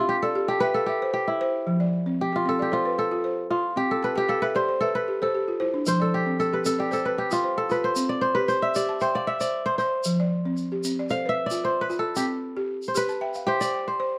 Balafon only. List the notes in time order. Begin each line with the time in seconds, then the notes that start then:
Already playing: G4
0.23 D5
0.35 G4
0.50 A5
0.62 E5 G5
0.75 F5
0.88 E5
1.02 C5
1.41 C5
1.67 F3
1.80 D5
2.06 C4
2.33 G4
2.46 C4
2.59 D5
2.72 A4 C5
2.85 B4
2.98 A4
3.11 F4
3.24 C5
3.51 F4
3.76 C4
4.03 A5
4.16 G4 G5
4.28 F5
4.42 E5
4.55 G4 D5
4.68 C5
4.81 B4 E5
4.95 A4
5.08 G4
5.22 A4 C5
5.35 G4
5.48 F4
5.60 E4 C5
5.74 D4
5.87 F3
6.00 D5
6.26 C4
6.52 G4
6.65 C4
6.79 D5
6.91 A4 C5
7.05 B4
7.18 A4
7.31 F4
7.44 C5
7.70 F4
7.96 C4
8.36 G4
8.62 D5
8.75 G4
8.89 A5
9.01 E5 G5
9.15 F5
9.27 E5
9.40 C5
9.80 C5
10.06 F3
10.20 D5
10.45 C4
10.72 G4
10.85 C4
10.99 D5
11.11 A4 C5
11.26 B4
11.51 F4
11.63 C5
11.90 F4
12.17 C4
12.57 G4
12.95 G4
13.09 A5
13.21 E5 G5
13.35 F5
13.48 E5
13.62 C5
13.74 G5
14.00 C5